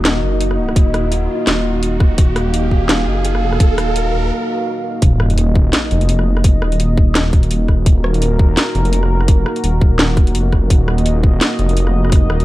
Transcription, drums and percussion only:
0.05 snare, closed hi-hat
0.41 closed hi-hat
0.51 cross-stick
0.69 cross-stick
0.76 kick, closed hi-hat
0.94 cross-stick, closed hi-hat
1.12 closed hi-hat
1.47 snare, closed hi-hat
1.83 closed hi-hat
2.00 kick, cross-stick
2.18 kick, closed hi-hat
2.36 cross-stick, closed hi-hat
2.54 closed hi-hat
2.71 kick
2.89 snare, closed hi-hat
3.25 closed hi-hat
3.35 cross-stick
3.52 cross-stick
3.60 kick, closed hi-hat
3.78 cross-stick, closed hi-hat
3.96 closed hi-hat
5.02 kick, closed hi-hat
5.20 cross-stick
5.30 closed hi-hat
5.38 closed hi-hat
5.55 kick
5.73 snare, closed hi-hat
5.91 closed hi-hat
6.01 closed hi-hat
6.09 closed hi-hat
6.19 cross-stick
6.37 cross-stick
6.44 kick, closed hi-hat
6.62 cross-stick
6.72 closed hi-hat
6.80 closed hi-hat
6.97 kick
7.15 snare, closed hi-hat
7.33 kick, closed hi-hat
7.43 closed hi-hat
7.51 closed hi-hat
7.68 kick, cross-stick
7.86 kick, closed hi-hat
8.04 cross-stick
8.14 closed hi-hat
8.22 closed hi-hat
8.39 kick
8.57 snare, closed hi-hat
8.75 closed hi-hat
8.85 closed hi-hat
8.93 closed hi-hat
9.03 cross-stick
9.21 cross-stick
9.28 kick, closed hi-hat
9.46 cross-stick
9.56 closed hi-hat
9.64 closed hi-hat
9.81 kick
9.99 snare
10.17 kick, cross-stick, closed hi-hat
10.27 closed hi-hat
10.35 closed hi-hat
10.52 kick, cross-stick
10.70 kick, closed hi-hat
10.88 cross-stick
10.98 closed hi-hat
11.06 closed hi-hat
11.24 kick
11.41 snare, closed hi-hat
11.59 closed hi-hat
11.69 closed hi-hat
11.77 closed hi-hat
11.87 cross-stick
12.05 cross-stick
12.10 kick, cross-stick, closed hi-hat
12.16 cross-stick
12.30 cross-stick
12.40 closed hi-hat

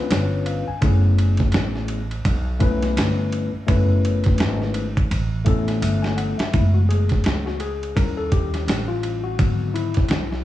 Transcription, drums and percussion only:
0.11 snare, hi-hat pedal, ride
0.46 ride
0.82 kick, ride
1.19 ride
1.37 kick, snare, ride
1.52 snare, hi-hat pedal, ride
1.75 snare
1.88 ride
2.11 ride
2.25 kick, ride
2.60 kick, ride
2.82 snare, ride
2.97 snare, hi-hat pedal, ride
3.32 ride
3.68 kick, ride
4.05 ride
4.24 kick, snare, ride
4.38 snare, hi-hat pedal, ride
4.62 snare
4.74 ride
4.97 kick, ride
5.11 ride
5.46 kick, ride
5.68 snare, ride
5.82 hi-hat pedal, ride
6.04 snare
6.18 ride
6.39 snare, ride
6.53 kick, ride
6.91 ride
7.09 kick, snare, ride
7.24 snare, hi-hat pedal, ride
7.47 snare
7.60 ride
7.83 ride
7.97 kick, ride
8.32 kick, ride
8.54 snare, ride
8.68 snare, hi-hat pedal, ride
9.03 ride
9.39 kick, ride
9.76 ride
9.94 kick, snare, ride
10.09 snare, hi-hat pedal, ride
10.32 snare

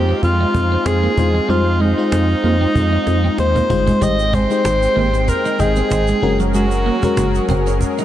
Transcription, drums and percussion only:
0.09 cajon slap
0.23 cajon bass, cajon slap
0.40 cajon slap
0.55 cajon bass
0.72 cajon slap
0.86 cajon slap
1.03 cajon slap
1.18 cajon bass
1.35 cajon slap
1.49 cajon slap
1.67 cajon slap
1.80 cajon slap
1.98 cajon slap
2.12 cajon slap
2.30 cajon slap
2.44 cajon slap
2.61 cajon slap
2.75 cajon bass, cajon slap
3.07 cajon slap
3.24 cajon slap
3.38 cajon slap
3.56 cajon bass
3.70 cajon bass
3.87 cajon bass
4.02 cajon bass, shaker
4.19 shaker
4.33 cajon bass
4.51 shaker
4.65 cajon slap, shaker
4.82 shaker
4.97 cajon slap
5.14 shaker
5.28 cajon bass, cajon slap, shaker
5.45 shaker
5.60 cajon bass, shaker
5.76 shaker
5.91 cajon slap, shaker
6.07 shaker
6.40 shaker
6.54 cajon slap, shaker
6.71 shaker
6.86 cajon slap
7.03 cajon bass, shaker
7.17 cajon slap, shaker
7.35 shaker
7.49 cajon bass
7.67 shaker
7.81 cajon bass, cajon slap, shaker
7.98 shaker

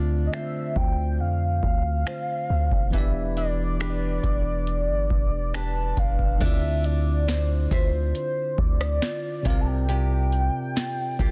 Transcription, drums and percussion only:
0.34 finger snap
0.76 kick
1.63 kick
2.07 finger snap
2.72 kick
2.93 kick, closed hi-hat
3.37 closed hi-hat
3.80 finger snap, closed hi-hat
4.23 kick, closed hi-hat
4.67 closed hi-hat
5.10 kick
5.54 finger snap, closed hi-hat
5.97 kick, closed hi-hat
6.19 kick
6.41 kick, closed hi-hat, crash
6.84 closed hi-hat
7.28 snare, closed hi-hat
7.71 kick, closed hi-hat
8.15 closed hi-hat
8.58 kick
8.81 cross-stick
9.02 snare, closed hi-hat
9.45 kick, closed hi-hat
9.89 closed hi-hat
10.32 closed hi-hat
10.76 snare, closed hi-hat
11.19 kick, closed hi-hat

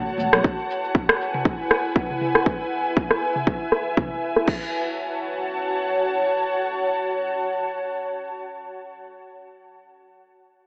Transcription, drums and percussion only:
0.08 shaker
0.18 high conga, shaker
0.33 cross-stick, shaker
0.44 kick, shaker
0.59 shaker
0.71 shaker
0.84 shaker
0.95 kick, shaker
1.09 cross-stick, shaker
1.21 shaker
1.34 mid tom, shaker
1.45 kick, shaker
1.60 shaker
1.71 cross-stick, shaker
1.86 shaker
1.96 kick
2.10 mid tom
2.21 mid tom, shaker
2.35 cross-stick, shaker
2.46 kick
2.72 shaker
2.97 kick
3.10 cross-stick
3.22 shaker
3.36 mid tom
3.47 kick
3.72 cross-stick
3.97 kick, mid tom
4.23 shaker
4.36 cross-stick
4.47 kick, crash

